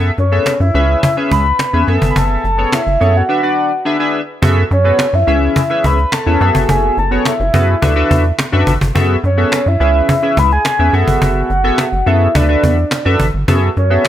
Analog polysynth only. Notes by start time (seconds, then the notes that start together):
Already playing: B3 G#4 A4 E5
0.32 B3 G#4 A4 E5
0.74 C#4 G#4 B4 E5
1.17 C#4 G#4 B4 E5
1.73 C#4 G#4 B4 E5
1.87 B3 G#4 A4 E5
2.58 B3 G#4 A4 C#5
3.00 B3 G#4 A4 C#5
3.29 D4 F#4 B4 E5
3.43 D4 F#4 B4 D5
3.85 D4 G#4 B4 E5
3.99 D4 G#4 B4 E5
4.42 B3 F#4 G#4 A4 E5
4.84 B3 F#4 G#4 A4 B4
5.27 C#4 E4 G#4 B4 E5
5.70 C#4 E4 G#4 B4 E5
6.26 C#4 E4 G#4 B4 E5
6.40 B3 F#4 G#4 A4 E5
7.11 B3 F#4 G#4 A4 C#5
7.54 B3 F#4 G#4 A4 B4
7.82 D4 F#4 A4 B4 E5
7.96 D4 F#4 A4 B4 E5
8.52 D4 F#4 A4 B4 E5
8.95 B3 F#4 G#4 A4 E5
9.37 B3 F#4 G#4 A4 E5
9.80 C#4 E4 G#4 B4 E5
10.22 C#4 E4 G#4 B4 E5
10.79 C#4 E4 G#4 B4 E5
10.93 B3 F#4 G#4 A4 E5
11.64 B3 F#4 G#4 A4 E5
12.06 B3 F#4 G#4 A4 E5
12.35 D4 F#4 A4 B4 E5
12.48 D4 F#4 A4 B4 E5
13.05 D4 F#4 A4 B4 E5
13.48 B3 F#4 G#4 A4 E5
13.90 B3 F#4 G#4 A4 E5